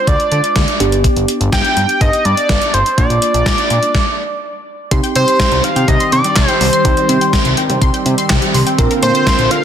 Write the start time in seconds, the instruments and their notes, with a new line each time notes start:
Already playing: synth keys G#3 D4 F4
0.07 analog synth bass D2, analog synth lead D5, kick, closed hi-hat
0.20 closed hi-hat
0.32 analog synth bass D3, closed hi-hat
0.44 closed hi-hat
0.56 analog synth bass D2, kick, snare, closed hi-hat
0.68 closed hi-hat
0.80 analog synth bass G1, synth keys B3 D4 G4, closed hi-hat
0.92 closed hi-hat
1.04 kick, closed hi-hat
1.16 analog synth bass G1, closed hi-hat
1.28 closed hi-hat
1.41 analog synth bass G1, closed hi-hat
1.52 analog synth lead G5, kick, snare, closed hi-hat
1.65 closed hi-hat
1.77 analog synth bass G2, closed hi-hat
1.89 closed hi-hat
2.01 analog synth bass G1, analog synth lead D#5, kick, closed hi-hat
2.13 closed hi-hat
2.25 analog synth bass G2, analog synth lead D5, closed hi-hat
2.37 closed hi-hat
2.49 analog synth bass G1, kick, snare, closed hi-hat
2.62 closed hi-hat
2.74 analog synth bass G1, analog synth lead C5, closed hi-hat
2.86 closed hi-hat
2.98 analog synth bass A#1, synth keys A#3 D4 F4, analog synth lead D5, kick, closed hi-hat
3.10 analog synth bass A#1, closed hi-hat
3.22 closed hi-hat
3.34 analog synth bass A#1, closed hi-hat
3.46 kick, snare, closed hi-hat
3.58 closed hi-hat
3.70 analog synth bass A#2, closed hi-hat
3.83 closed hi-hat
3.95 kick, snare
4.91 analog synth bass C2, analog synth pad D#3 G3 C4 G4, synth keys C4 D#4 G4, synth arpeggio sound C6, kick, closed hi-hat
5.03 synth arpeggio sound G5, closed hi-hat
5.15 analog synth bass C3, synth arpeggio sound G3, analog synth lead C5, closed hi-hat
5.28 synth arpeggio sound C6, closed hi-hat
5.40 synth arpeggio sound G5, kick, snare, closed hi-hat
5.52 analog synth bass C2, synth arpeggio sound G3, closed hi-hat
5.64 analog synth lead F5, closed hi-hat
5.76 analog synth bass C3, synth arpeggio sound G5, closed hi-hat
5.88 analog synth bass C2, synth arpeggio sound G3, analog synth lead D#5, kick, closed hi-hat
6.00 synth arpeggio sound C6, closed hi-hat
6.12 analog synth bass C3, analog synth lead D5, synth arpeggio sound G5, closed hi-hat
6.24 synth arpeggio sound G3, closed hi-hat
6.36 analog synth bass C2, synth arpeggio sound C6, kick, snare, clap, closed hi-hat
6.48 analog synth lead C5, synth arpeggio sound G5, closed hi-hat
6.61 analog synth bass C2, synth arpeggio sound G3, analog synth lead C5, open hi-hat
6.73 synth arpeggio sound C6, closed hi-hat
6.85 analog synth bass C2, synth keys C4 D#4 G4, synth arpeggio sound G5, kick, closed hi-hat
6.97 synth arpeggio sound G3, closed hi-hat
7.09 analog synth bass C3, synth arpeggio sound C6, closed hi-hat
7.21 synth arpeggio sound G5, closed hi-hat
7.33 synth arpeggio sound G3, kick, snare, closed hi-hat
7.45 analog synth bass C2, synth arpeggio sound C6, closed hi-hat
7.57 synth arpeggio sound G5, closed hi-hat
7.70 analog synth bass C3, synth arpeggio sound G3, closed hi-hat
7.82 analog synth bass C2, synth arpeggio sound C6, kick, closed hi-hat
7.94 synth arpeggio sound G5, closed hi-hat
8.06 analog synth bass C3, closed hi-hat
8.18 synth arpeggio sound C6, closed hi-hat
8.30 analog synth bass C2, synth arpeggio sound G5, kick, snare, clap, closed hi-hat
8.42 synth arpeggio sound G3, closed hi-hat
8.54 analog synth bass C2, synth arpeggio sound C6, open hi-hat
8.67 synth arpeggio sound G5, closed hi-hat
8.78 analog synth bass A#1, analog synth pad D3 A#3 F4, synth keys C4 D4 A#4, synth arpeggio sound C5, kick, closed hi-hat
8.91 synth arpeggio sound A#4, closed hi-hat
9.03 analog synth bass A#2, synth arpeggio sound A#3, analog synth lead C5, closed hi-hat
9.15 synth arpeggio sound C5, closed hi-hat
9.27 synth arpeggio sound A#4, kick, snare, closed hi-hat
9.39 analog synth bass A#1, synth arpeggio sound A#3, closed hi-hat
9.51 analog synth lead F5, closed hi-hat